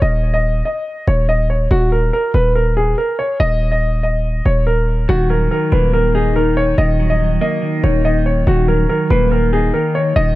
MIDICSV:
0, 0, Header, 1, 4, 480
1, 0, Start_track
1, 0, Key_signature, -6, "minor"
1, 0, Tempo, 422535
1, 22, Time_signature, 4, 2, 24, 8
1, 11761, End_track
2, 0, Start_track
2, 0, Title_t, "Grand piano"
2, 0, Program_c, 0, 0
2, 21, Note_on_c, 0, 75, 91
2, 360, Note_off_c, 0, 75, 0
2, 381, Note_on_c, 0, 75, 88
2, 720, Note_off_c, 0, 75, 0
2, 742, Note_on_c, 0, 75, 79
2, 1193, Note_off_c, 0, 75, 0
2, 1222, Note_on_c, 0, 73, 77
2, 1422, Note_off_c, 0, 73, 0
2, 1462, Note_on_c, 0, 75, 86
2, 1662, Note_off_c, 0, 75, 0
2, 1702, Note_on_c, 0, 73, 70
2, 1902, Note_off_c, 0, 73, 0
2, 1943, Note_on_c, 0, 66, 103
2, 2142, Note_off_c, 0, 66, 0
2, 2182, Note_on_c, 0, 70, 78
2, 2382, Note_off_c, 0, 70, 0
2, 2423, Note_on_c, 0, 70, 82
2, 2622, Note_off_c, 0, 70, 0
2, 2663, Note_on_c, 0, 71, 99
2, 2862, Note_off_c, 0, 71, 0
2, 2902, Note_on_c, 0, 70, 77
2, 3102, Note_off_c, 0, 70, 0
2, 3144, Note_on_c, 0, 68, 88
2, 3343, Note_off_c, 0, 68, 0
2, 3384, Note_on_c, 0, 70, 79
2, 3583, Note_off_c, 0, 70, 0
2, 3622, Note_on_c, 0, 73, 83
2, 3822, Note_off_c, 0, 73, 0
2, 3861, Note_on_c, 0, 75, 120
2, 4200, Note_off_c, 0, 75, 0
2, 4220, Note_on_c, 0, 75, 87
2, 4559, Note_off_c, 0, 75, 0
2, 4582, Note_on_c, 0, 75, 80
2, 5033, Note_off_c, 0, 75, 0
2, 5063, Note_on_c, 0, 73, 79
2, 5262, Note_off_c, 0, 73, 0
2, 5301, Note_on_c, 0, 70, 82
2, 5752, Note_off_c, 0, 70, 0
2, 5781, Note_on_c, 0, 66, 121
2, 5981, Note_off_c, 0, 66, 0
2, 6021, Note_on_c, 0, 70, 85
2, 6221, Note_off_c, 0, 70, 0
2, 6262, Note_on_c, 0, 70, 84
2, 6462, Note_off_c, 0, 70, 0
2, 6502, Note_on_c, 0, 71, 89
2, 6702, Note_off_c, 0, 71, 0
2, 6742, Note_on_c, 0, 70, 86
2, 6942, Note_off_c, 0, 70, 0
2, 6983, Note_on_c, 0, 68, 82
2, 7182, Note_off_c, 0, 68, 0
2, 7223, Note_on_c, 0, 70, 88
2, 7423, Note_off_c, 0, 70, 0
2, 7463, Note_on_c, 0, 73, 89
2, 7662, Note_off_c, 0, 73, 0
2, 7702, Note_on_c, 0, 75, 95
2, 8040, Note_off_c, 0, 75, 0
2, 8064, Note_on_c, 0, 75, 85
2, 8401, Note_off_c, 0, 75, 0
2, 8423, Note_on_c, 0, 75, 82
2, 8874, Note_off_c, 0, 75, 0
2, 8903, Note_on_c, 0, 73, 77
2, 9102, Note_off_c, 0, 73, 0
2, 9143, Note_on_c, 0, 75, 85
2, 9343, Note_off_c, 0, 75, 0
2, 9383, Note_on_c, 0, 73, 70
2, 9582, Note_off_c, 0, 73, 0
2, 9623, Note_on_c, 0, 66, 100
2, 9822, Note_off_c, 0, 66, 0
2, 9863, Note_on_c, 0, 70, 80
2, 10063, Note_off_c, 0, 70, 0
2, 10104, Note_on_c, 0, 70, 83
2, 10303, Note_off_c, 0, 70, 0
2, 10343, Note_on_c, 0, 71, 96
2, 10542, Note_off_c, 0, 71, 0
2, 10583, Note_on_c, 0, 70, 80
2, 10782, Note_off_c, 0, 70, 0
2, 10823, Note_on_c, 0, 68, 85
2, 11022, Note_off_c, 0, 68, 0
2, 11061, Note_on_c, 0, 70, 78
2, 11261, Note_off_c, 0, 70, 0
2, 11302, Note_on_c, 0, 73, 83
2, 11502, Note_off_c, 0, 73, 0
2, 11541, Note_on_c, 0, 75, 116
2, 11761, Note_off_c, 0, 75, 0
2, 11761, End_track
3, 0, Start_track
3, 0, Title_t, "Clean electric guitar"
3, 0, Program_c, 1, 27
3, 5787, Note_on_c, 1, 51, 94
3, 6016, Note_on_c, 1, 54, 82
3, 6245, Note_off_c, 1, 51, 0
3, 6258, Note_on_c, 1, 51, 79
3, 6496, Note_on_c, 1, 58, 90
3, 6729, Note_off_c, 1, 51, 0
3, 6743, Note_on_c, 1, 51, 80
3, 6984, Note_on_c, 1, 63, 83
3, 7211, Note_off_c, 1, 51, 0
3, 7219, Note_off_c, 1, 54, 0
3, 7225, Note_on_c, 1, 51, 87
3, 7687, Note_off_c, 1, 51, 0
3, 7698, Note_off_c, 1, 58, 0
3, 7700, Note_on_c, 1, 51, 97
3, 7946, Note_on_c, 1, 54, 82
3, 8161, Note_off_c, 1, 51, 0
3, 8175, Note_on_c, 1, 51, 74
3, 8183, Note_off_c, 1, 63, 0
3, 8420, Note_on_c, 1, 58, 94
3, 8644, Note_off_c, 1, 51, 0
3, 8658, Note_on_c, 1, 51, 76
3, 8901, Note_on_c, 1, 63, 84
3, 9124, Note_off_c, 1, 51, 0
3, 9138, Note_on_c, 1, 51, 96
3, 9144, Note_off_c, 1, 54, 0
3, 9611, Note_off_c, 1, 51, 0
3, 9620, Note_off_c, 1, 58, 0
3, 9621, Note_off_c, 1, 63, 0
3, 9625, Note_on_c, 1, 51, 92
3, 9861, Note_on_c, 1, 54, 82
3, 10089, Note_off_c, 1, 51, 0
3, 10102, Note_on_c, 1, 51, 73
3, 10349, Note_on_c, 1, 58, 102
3, 10559, Note_off_c, 1, 51, 0
3, 10573, Note_on_c, 1, 51, 79
3, 10825, Note_on_c, 1, 63, 83
3, 11051, Note_off_c, 1, 51, 0
3, 11061, Note_off_c, 1, 54, 0
3, 11065, Note_on_c, 1, 51, 94
3, 11527, Note_off_c, 1, 51, 0
3, 11540, Note_on_c, 1, 51, 95
3, 11545, Note_off_c, 1, 58, 0
3, 11761, Note_off_c, 1, 51, 0
3, 11761, Note_off_c, 1, 63, 0
3, 11761, End_track
4, 0, Start_track
4, 0, Title_t, "808-style bass"
4, 0, Program_c, 2, 38
4, 21, Note_on_c, 2, 27, 112
4, 713, Note_off_c, 2, 27, 0
4, 1222, Note_on_c, 2, 27, 111
4, 1913, Note_off_c, 2, 27, 0
4, 1941, Note_on_c, 2, 27, 118
4, 2402, Note_off_c, 2, 27, 0
4, 2661, Note_on_c, 2, 27, 105
4, 3352, Note_off_c, 2, 27, 0
4, 3862, Note_on_c, 2, 27, 114
4, 5016, Note_off_c, 2, 27, 0
4, 5062, Note_on_c, 2, 27, 105
4, 5753, Note_off_c, 2, 27, 0
4, 5781, Note_on_c, 2, 27, 111
4, 6242, Note_off_c, 2, 27, 0
4, 6501, Note_on_c, 2, 27, 104
4, 7656, Note_off_c, 2, 27, 0
4, 7702, Note_on_c, 2, 27, 112
4, 8393, Note_off_c, 2, 27, 0
4, 8903, Note_on_c, 2, 27, 104
4, 9593, Note_off_c, 2, 27, 0
4, 9622, Note_on_c, 2, 27, 113
4, 10083, Note_off_c, 2, 27, 0
4, 10343, Note_on_c, 2, 27, 106
4, 11033, Note_off_c, 2, 27, 0
4, 11542, Note_on_c, 2, 27, 112
4, 11761, Note_off_c, 2, 27, 0
4, 11761, End_track
0, 0, End_of_file